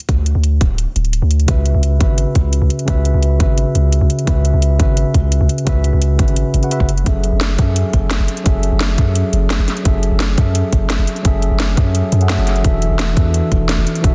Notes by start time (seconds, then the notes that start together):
0.00 closed hi-hat
0.09 D2, kick, closed hi-hat
0.26 closed hi-hat
0.35 D2
0.44 closed hi-hat
0.61 D1, kick, closed hi-hat
0.78 closed hi-hat
0.96 D1, closed hi-hat
1.05 closed hi-hat
1.13 closed hi-hat
1.22 D2
1.31 closed hi-hat
1.40 closed hi-hat
1.46 C#2 C#3 C#4 F#4 B4, kick, closed hi-hat
1.51 E5
1.66 closed hi-hat
1.75 C#2
1.83 closed hi-hat
1.98 G#1 C#3 C#4 F#4 B4, kick, closed hi-hat
2.03 E5
2.18 closed hi-hat
2.35 C#2, kick, closed hi-hat
2.53 closed hi-hat
2.62 C#2
2.70 closed hi-hat
2.79 closed hi-hat
2.85 C#2 C#3 C#4 F#4 B4, kick, closed hi-hat
2.90 E5
3.05 closed hi-hat
3.14 C#2
3.23 closed hi-hat
3.38 G#1 C#3 C#4 F#4 B4, kick, closed hi-hat
3.42 E5
3.58 closed hi-hat
3.75 C#2, closed hi-hat
3.92 closed hi-hat
4.01 C#2
4.10 closed hi-hat
4.19 closed hi-hat
4.25 C#2 C#3 C#4 F#4 B4, kick, closed hi-hat
4.30 E5
4.45 closed hi-hat
4.54 C#2
4.62 closed hi-hat
4.77 G#1 C#3 C#4 F#4 B4, kick, closed hi-hat
4.82 E5
4.97 closed hi-hat
5.14 C#2, kick, closed hi-hat
5.32 closed hi-hat
5.41 C#2
5.49 closed hi-hat
5.58 closed hi-hat
5.64 C#2 C#3 C#4 F#4 B4, kick, closed hi-hat
5.69 E5
5.84 closed hi-hat
5.93 C#2
6.02 closed hi-hat
6.17 G#1 C#3 C#4 F#4 B4, kick, closed hi-hat
6.21 E5
6.28 closed hi-hat
6.36 closed hi-hat
6.54 G#1, closed hi-hat
6.62 C#3 C#4 F#4 B4 F#5, closed hi-hat
6.70 C#3 C#4 F#4 B4 E5, closed hi-hat
6.80 F#1, kick
6.89 closed hi-hat
6.98 closed hi-hat
7.04 F#1 F#3 C#4 G#4 A4, kick, closed hi-hat
7.09 E5
7.24 closed hi-hat
7.33 F#1
7.41 snare, closed hi-hat
7.56 F#2 F#3 C#4 G#4 A4, kick, closed hi-hat
7.61 E5
7.76 closed hi-hat
7.93 F#1, kick, closed hi-hat
8.11 snare, closed hi-hat
8.20 F#1
8.28 closed hi-hat
8.37 closed hi-hat
8.44 F#1 F#3 C#4 G#4 A4, kick, closed hi-hat
8.48 E5
8.63 closed hi-hat
8.72 F#1
8.81 snare, closed hi-hat
8.96 F#2 F#3 C#4 G#4 A4, kick, closed hi-hat
9.01 E5
9.15 closed hi-hat
9.33 F#1, closed hi-hat
9.50 snare, closed hi-hat
9.59 F#1
9.68 snare, closed hi-hat
9.77 closed hi-hat
9.83 F#1 F#3 C#4 G#4 A4, kick, closed hi-hat
9.88 E5
10.03 closed hi-hat
10.12 F#1
10.20 snare, closed hi-hat
10.36 F#2 F#3 C#4 G#4 A4, kick, closed hi-hat
10.40 E5
10.55 closed hi-hat
10.72 F#1, kick, closed hi-hat
10.90 snare, closed hi-hat
10.99 F#1
11.07 closed hi-hat
11.16 closed hi-hat
11.23 F#1 F#3 C#4 G#4 A4, kick, closed hi-hat
11.27 E5
11.42 closed hi-hat
11.51 F#1
11.60 snare, closed hi-hat
11.75 F#2 F#3 C#4 G#4 A4, kick, closed hi-hat
11.80 E5
11.95 closed hi-hat
12.12 F#2, closed hi-hat
12.20 F#3 C#4 G#4 A4 F#5, closed hi-hat
12.28 F#3 C#4 G#4 A4 E5, snare, closed hi-hat
12.38 F#1
12.47 snare, closed hi-hat
12.56 closed hi-hat
12.62 E1 E3 D4 F#4 A4, kick, closed hi-hat
12.67 E5
12.82 closed hi-hat
12.91 E1
12.99 snare, closed hi-hat
13.15 E2 E3 D4 F#4 A4, kick, closed hi-hat
13.19 E5
13.34 closed hi-hat
13.52 E1, kick, closed hi-hat
13.69 snare, closed hi-hat
13.78 E1
13.87 closed hi-hat
13.95 closed hi-hat
14.02 E1 E3 D4 F#4 A4, kick, closed hi-hat
14.07 E5